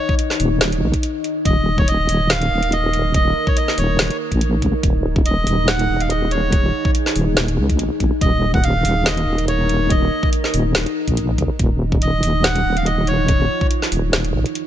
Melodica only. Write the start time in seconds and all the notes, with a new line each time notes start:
Already playing: C#5
1.46 D#5
1.78 C#5
1.88 D#5
2.30 F5
2.73 D#5
3.15 D#5
3.48 C#5
3.57 D#5
3.78 C#5
5.26 D#5
5.68 F#5
6.01 F5
6.10 D#5
6.31 C#5
8.21 D#5
8.54 F#5
8.64 F5
9.06 D#5
9.48 C#5
9.90 D#5
12.02 D#5
12.44 F#5
12.77 F5
12.86 D#5
13.08 C#5